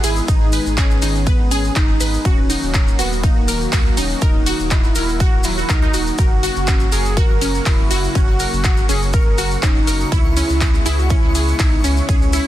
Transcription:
Already playing: analog synth pad D#3 G#3 B3 G#4
0.04 sub bass G#1, soft synth lead E4, synth pluck G#4, open hi-hat, maracas
0.16 maracas
0.28 sub bass G#1, synth pluck D#4, soft synth lead D#4, kick, ride, maracas
0.52 synth pluck B4, open hi-hat, maracas
0.66 sub bass G#1, maracas
0.78 soft synth lead C#4, synth pluck G#4, kick, clap, ride, maracas
0.91 maracas
1.02 sub bass G#1, synth pluck D#4, open hi-hat, maracas
1.15 maracas
1.27 soft synth lead B3, synth pluck B4, kick, ride, maracas
1.40 sub bass G#1
1.51 soft synth lead C#4, synth pluck G#4, open hi-hat, maracas
1.64 maracas
1.76 sub bass F#1, synth pluck D#4, soft synth lead D#4, kick, clap, ride, maracas
2.00 sub bass G#1, synth pluck B4, open hi-hat, maracas
2.14 maracas
2.25 sub bass D#1, analog synth pad D#3 F#3 A#3 F#4, soft synth lead C#4, synth pluck F#4, kick, ride, maracas
2.50 synth pluck D#4, open hi-hat, maracas
2.63 sub bass D#1, maracas
2.74 synth pluck A#4, kick, clap, ride, maracas
2.88 maracas
2.99 sub bass D#1, soft synth lead B3, synth pluck F#4, open hi-hat, maracas
3.12 maracas
3.23 soft synth lead A#3, synth pluck D#4, kick, ride, maracas
3.36 sub bass D#1
3.48 synth pluck A#4, open hi-hat, maracas
3.61 maracas
3.73 sub bass C#2, synth pluck F#4, kick, clap, open hi-hat, ride, maracas
3.97 sub bass D#1, soft synth lead C#4, synth pluck D#4, open hi-hat, maracas
4.10 maracas
4.21 sub bass D#1, soft synth lead D#4, synth pluck A#4, kick, ride, maracas
4.46 synth pluck F#4, open hi-hat, maracas
4.59 sub bass D#1, maracas
4.71 synth pluck D#4, soft synth lead E4, kick, clap, ride, maracas
4.84 maracas
4.95 sub bass D#1, soft synth lead E4, synth pluck A#4, open hi-hat, maracas
5.09 maracas
5.20 synth pluck F#4, soft synth lead F#4, kick, ride, maracas
5.33 sub bass D#1
5.43 synth pluck F#3, soft synth lead E4, open hi-hat, maracas
5.58 synth pluck F#4, maracas
5.69 sub bass C#2, soft synth lead D#4, synth pluck A#4, kick, clap, ride, maracas
5.82 synth pluck D#4
5.94 sub bass D#1, synth pluck F#4, open hi-hat, maracas
6.07 maracas
6.18 sub bass F#1, analog synth pad C#3 A#3 F#4, soft synth lead F#4, synth pluck A#4, synth texture C#6, kick, ride, maracas
6.43 synth pluck F#4, open hi-hat, maracas
6.56 sub bass F#1, maracas
6.67 synth pluck C#4, kick, clap, ride, maracas
6.80 maracas
6.92 sub bass F#1, soft synth lead G#4, synth pluck A#4, open hi-hat, maracas
7.05 maracas
7.17 synth pluck F#4, soft synth lead A#4, kick, ride, maracas
7.30 sub bass F#1
7.41 synth pluck C#4, open hi-hat, maracas
7.54 maracas
7.66 sub bass E1, soft synth lead E4, synth pluck A#4, kick, clap, open hi-hat, ride, maracas
7.91 sub bass F#1, synth pluck F#4, open hi-hat, maracas
8.04 maracas
8.15 sub bass F#1, synth pluck C#4, soft synth lead F#4, kick, ride, maracas
8.39 synth pluck A#4, open hi-hat, maracas
8.53 sub bass F#1, maracas
8.64 synth pluck F#4, kick, clap, ride, maracas
8.77 maracas
8.89 sub bass F#1, synth pluck C#4, soft synth lead G#4, open hi-hat, maracas
9.02 maracas
9.13 soft synth lead A#4, synth pluck A#4, kick, ride, maracas
9.26 sub bass F#1
9.38 synth pluck F#4, open hi-hat, maracas
9.51 maracas
9.63 sub bass E1, synth pluck C#4, soft synth lead D#4, kick, clap, ride, maracas
9.87 sub bass F#1, synth pluck A#4, open hi-hat, maracas
10.00 maracas
10.12 sub bass C#2, analog synth pad G#3 B3 E4, synth pluck E4, soft synth lead E4, kick, ride, maracas
10.37 synth pluck C#4, open hi-hat, maracas
10.49 sub bass C#2, maracas
10.61 synth pluck G#4, kick, clap, ride, maracas
10.74 maracas
10.86 sub bass C#2, synth pluck E4, soft synth lead G#4, open hi-hat, maracas
10.99 soft synth lead F#4, maracas
11.10 synth pluck C#4, soft synth lead E4, kick, ride, maracas
11.23 sub bass C#2
11.35 synth pluck G#4, open hi-hat, maracas
11.48 maracas
11.59 sub bass B1, soft synth lead D#4, synth pluck E4, kick, clap, open hi-hat, ride, maracas
11.84 sub bass C#2, synth pluck C#4, soft synth lead C#4, open hi-hat, maracas
11.97 maracas
12.09 sub bass C#2, synth pluck G#4, kick, ride, maracas
12.22 maracas
12.33 synth pluck E4, open hi-hat, maracas

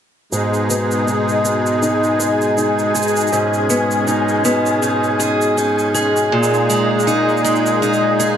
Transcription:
0.32 steel-string acoustic guitar G#2, accordion B2 G#3 D#4 G#4, synth texture G#5, shaker
0.54 shaker
0.70 steel-string acoustic guitar B3, shaker
0.91 shaker
1.07 steel-string acoustic guitar D#4, shaker
1.29 shaker
1.45 steel-string acoustic guitar B3, shaker
1.66 shaker
1.82 steel-string acoustic guitar D#4, shaker
2.04 shaker
2.20 steel-string acoustic guitar G#4, shaker
2.41 shaker
2.57 steel-string acoustic guitar D#4, shaker
2.79 shaker
2.95 steel-string acoustic guitar G#4, shaker
3.02 shaker
3.08 shaker
3.16 shaker
3.20 shaker
3.27 shaker
3.32 steel-string acoustic guitar G#2, accordion C#4, shaker
3.54 shaker
3.70 steel-string acoustic guitar B3, shaker
3.91 shaker
4.07 steel-string acoustic guitar D#4, shaker
4.29 shaker
4.45 steel-string acoustic guitar B3, shaker
4.66 shaker
4.82 steel-string acoustic guitar D#4, shaker
5.04 shaker
5.20 steel-string acoustic guitar G#4, shaker
5.41 shaker
5.57 steel-string acoustic guitar D#4, shaker
5.79 shaker
5.94 steel-string acoustic guitar G#4, shaker
6.16 shaker
6.32 accordion A#2 D#4 G#4, steel-string acoustic guitar A#2
6.43 shaker
6.54 shaker
6.70 steel-string acoustic guitar G#3, shaker
7.00 shaker
7.07 steel-string acoustic guitar D#4, shaker
7.29 shaker
7.37 shaker
7.44 steel-string acoustic guitar G#3, shaker
7.56 shaker
7.66 shaker
7.82 steel-string acoustic guitar D#4, shaker
7.93 shaker
8.20 steel-string acoustic guitar G#4, shaker

